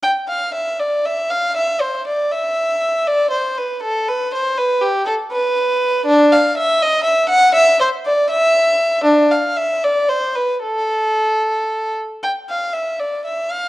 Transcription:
X:1
M:6/8
L:1/8
Q:3/8=80
K:Ephr
V:1 name="Violin"
g f e d e f | e c d e3 | d c B A B c | B G A B3 |
[K:Am] D f e ^d e ^f | e c d e3 | D f e d c B | A4- A z |
[K:Ephr] g f e d e f |]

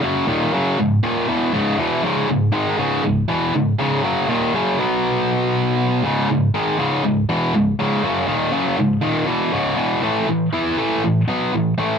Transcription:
X:1
M:4/4
L:1/8
Q:1/4=120
K:C#m
V:1 name="Distorted electric guitar" clef=bass
[F,,C,F,] [D,,^A,,D,] [F,,C,F,] [C,,G,,] [D,,A,,D,] [E,,B,,E,] [C,,G,,C,] [E,,B,,E,] | [C,,G,,C,] [C,,G,,] [G,,D,G,] [C,,G,,C,] [C,,G,,] [E,,B,,E,] [C,,G,,] [C,,G,,C,] | [F,,C,F,] [D,,^A,,D,] [F,,C,F,] [B,,F,B,]4- [B,,F,B,] | [C,,G,,C,] [C,,G,,] [G,,D,G,] [C,,G,,C,] [C,,G,,] [E,,B,,E,] [C,,G,,] [C,,G,,C,] |
[F,,C,F,] [D,,^A,,D,] [F,,C,F,] [C,,G,,] [D,,A,,D,] [E,,B,,E,] [C,,G,,C,] [E,,B,,E,] | [A,,E,A,] [A,,E,] [E,B,E] [A,,E,A,] [A,,E,] [B,,F,B,] [A,,E,] [A,,E,A,] |]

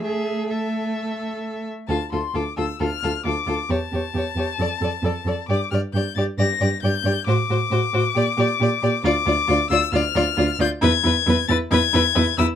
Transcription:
X:1
M:4/4
L:1/8
Q:1/4=135
K:C
V:1 name="Violin"
^G2 A4- A z | [K:Dm] a c' d' e' f'2 d'2 | a8 | d' f' g' a' b'2 g'2 |
d'8 | [K:Ddor] d'3 e' f'3 g' | ^g'3 a' g'3 e' |]
V:2 name="Violin"
e2 e4- e z | [K:Dm] A A A A A A A A | ^c c c c d d d d | d d d d d d d d |
c c c c d d d d | [K:Ddor] d d d d d d d d | B B B B B B B B |]
V:3 name="Viola"
A,6- A, z | [K:Dm] F F F F F F F F | G G G G A A A A | G G G G G G G G |
^F F F F G G G G | [K:Ddor] F F F F F F F F | E E E E E E E E |]
V:4 name="Cello" clef=bass
^G2 A4- A z | [K:Dm] D,, D,, D,, D,, D,, D,, D,, D,, | E,, E,, E,, E,, F,, F,, F,, F,, | G,, G,, G,, G,, G,, G,, G,, G,, |
A,, A,, A,, A,, B,, B,, B,, B,, | [K:Ddor] D,, D,, D,, D,, D,, D,, D,, D,, | E,, E,, E,, E,, E,, E,, E,, E,, |]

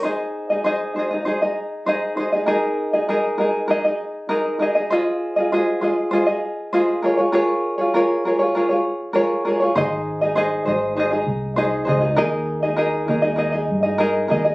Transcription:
X:1
M:4/4
L:1/16
Q:1/4=99
K:Ab
V:1 name="Ukulele"
[EAce]3 [EAe] [EAce]2 [EAce] [EAe] [EAce] [EAe]3 [EAce]2 [EAce] [EAe] | [EABe]3 [EAe] [EABe]2 [EABe]2 [EABe] [EAe]3 [EABe]2 [EABe] [EAe] | [FAce]3 [FAe] [FAce]2 [FAce]2 [FAce] [FAe]3 [FAce]2 [FABd] [FAd] | [FABd]3 [FAd] [FABd]2 [FABd] [FAd] [FABd] [FAd]3 [FABd]2 [FABd] [FAd] |
[EAce]3 [EAe] [EAce]2 [EAce]2 [EAce] [EAe]3 [EAce]2 [EAce] [EAe] | [EABe]3 [EAe] [EABe]2 [EABe] [EAe] [EABe] [EAe]2 [EAe] [EABe]2 [EABe] [EAe] |]
V:2 name="Fingered electric bass" clef=bass
z16 | z16 | z16 | z16 |
A,,,6 A,,,4 C,,4 D,,2 | E,,6 E,,4 G,,4 E,,2 |]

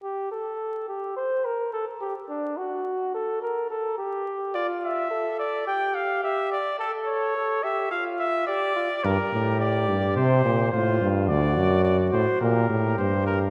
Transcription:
X:1
M:4/4
L:1/8
Q:1/4=107
K:Gm
V:1 name="Trumpet"
z8 | z8 | d =e2 d g f e d | A ^c2 =e f e d2 |
B2 d2 c2 c z | d2 d c B2 c B |]
V:2 name="Flugelhorn"
G A2 G c B A G | D ^F2 A B A G2 | F2 A2 G2 G z | A2 A G F2 G F |
G6 F2 | ^F4 G4 |]
V:3 name="Bass trombone" clef=bass
z8 | z8 | z8 | z8 |
G,, A,,2 G,, C, B,, A,, G,, | D,, ^F,,2 A,, B,, A,, G,,2 |]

